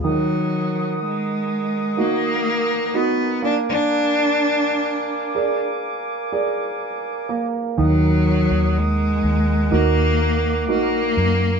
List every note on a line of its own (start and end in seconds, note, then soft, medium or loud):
0.00 3.39 D#3 soft
0.00 0.14 G#3 medium
0.00 0.14 F4 medium
0.00 0.14 G#4 medium
0.00 11.60 A#4 medium
0.00 3.39 D#5 medium
0.00 3.39 F#5 medium
0.00 3.39 D#6 medium
0.06 0.98 F#3 medium
1.03 2.01 G#3 medium
1.97 2.91 A#3 soft
1.97 2.97 A#3 medium
1.97 2.92 D#4 soft
1.97 2.92 F#4 soft
2.94 3.43 B3 medium
2.94 3.41 D#4 soft
2.94 3.42 F#4 soft
2.94 3.41 A#4 soft
3.42 7.26 A#3 medium
3.42 3.55 D4 medium
3.42 7.62 F5 medium
3.42 7.62 G#5 medium
3.42 7.62 D6 medium
3.70 5.58 D4 medium
5.35 6.29 G#4 soft
5.35 6.30 A#4 soft
5.35 6.30 D5 soft
6.32 7.27 G#4 soft
6.32 7.27 A#4 soft
6.32 7.27 D5 soft
7.29 7.76 A#3 medium
7.78 8.47 D#2 medium
7.78 11.60 D#3 medium
7.78 8.79 F#3 medium
7.78 11.60 D#5 medium
7.78 11.60 F#5 medium
7.78 9.70 D#6 medium
8.51 9.20 D#2 medium
8.77 9.75 G#3 medium
9.24 9.69 D#2 medium
9.71 10.69 D#2 medium
9.71 10.70 A#3 medium
9.71 10.65 D#4 soft
9.71 10.66 F#4 soft
9.71 10.66 A#4 soft
9.71 11.60 D6 medium
10.68 11.14 A#1 medium
10.68 11.60 A#3 medium
10.68 11.60 D#4 soft
10.68 11.60 F#4 soft
10.68 11.60 A#4 soft
11.17 11.60 F#2 medium